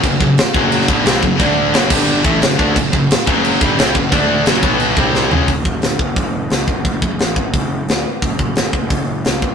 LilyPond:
<<
  \new Staff \with { instrumentName = "Distorted electric guitar" } { \clef bass \time 4/4 \key fis \minor \tempo 4 = 176 <fis, cis>8 <fis, cis>8 r8 <fis, cis fis>4 <g, d g>8 <bis, g bis>8 <fis, cis>8 | <d a d'>4 <fis, cis fis>8 <g, d g>4 <a, e a>8 <fis, cis>8 <d a d'>8 | <fis, cis>8 <fis, cis>8 r8 <fis, cis fis>4 <g, d g>8 <bis, g bis>8 <fis, cis>8 | <d a d'>4 <fis, cis fis>8 <b, fis b>4 <c g c'>4 <cis gis cis'>8 |
r1 | r1 | r1 | }
  \new Staff \with { instrumentName = "Distorted electric guitar" } { \clef bass \time 4/4 \key fis \minor <fis, cis>8 <fis, cis>8 r8 <fis, cis fis>4 <g, d g>8 <bis, g bis>8 <fis, cis>8 | <d a d'>4 <fis, cis fis>8 <g, d g>4 <a, e a>8 <fis, cis>8 <d a d'>8 | <fis, cis>8 <fis, cis>8 r8 <fis, cis fis>4 <g, d g>8 <bis, g bis>8 <fis, cis>8 | <d a d'>4 <fis, cis fis>8 <b, fis b>4 <c g c'>4 <cis gis cis'>8 |
r1 | r1 | r1 | }
  \new Staff \with { instrumentName = "Overdriven electric guitar" } { \clef bass \time 4/4 \key fis \minor <fis, cis>8 <fis, cis>8 r8 <fis, cis fis>4 <g, d g>8 <bis, g bis>8 <fis, cis>8 | <d a d'>4 <fis, cis fis>8 <g, d g>4 <a, e a>8 <fis, cis>8 <d a d'>8 | <fis, cis>8 <fis, cis>8 r8 <fis, cis fis>4 <g, d g>8 <bis, g bis>8 <fis, cis>8 | <d a d'>4 <fis, cis fis>8 <b, fis b>4 <c g c'>4 <cis gis cis'>8 |
r1 | r1 | r1 | }
  \new Staff \with { instrumentName = "Picked electric bass" } { \clef bass \time 4/4 \key fis \minor fis,,8 fis,,8 r8 fis,,4 g,,8 bis,,8 fis,,8 | d,4 fis,,8 g,,4 a,,8 fis,,8 d,8 | fis,,8 fis,,8 r8 fis,,4 g,,8 bis,,8 fis,,8 | d,4 fis,,8 b,,4 c,4 cis,8 |
fis,,8 fis,,8 g,,8 fis,,8 fis,,4 cis,8 fis,,8 | fis,,8 fis,,8 a,,8 fis,,8 fis,,4 d,8 r8 | fis,,8 fis,,8 g,,8 fis,,8 fis,,4 cis,8 fis,,8 | }
  \new DrumStaff \with { instrumentName = "Drums" } \drummode { \time 4/4 <cymc bd>8 bd8 <cymc sn>8 bd8 cymc16 sn16 bd8 <cymc sn>16 sn16 bd8 | <cymc bd>4 <cymc sn>8 <cymc bd>8 cymc8 bd8 <cymc sn>16 sn16 bd8 | <cymc bd>8 bd8 <cymc sn>8 bd8 cymc8 bd8 <cymc sn>16 sn16 bd8 | <cymc bd>4 <cymc sn>8 bd8 cymc8 bd8 sn8 tomfh8 |
<hho bd>8 bd8 <hho sn>8 bd8 <hho bd>4 <hho sn>8 bd8 | <hho bd>8 bd8 <hho sn>8 bd8 <hho bd>4 <hho sn>4 | <hho bd>8 bd8 <hho sn>8 bd8 <hho bd>4 <hho sn>8 bd8 | }
>>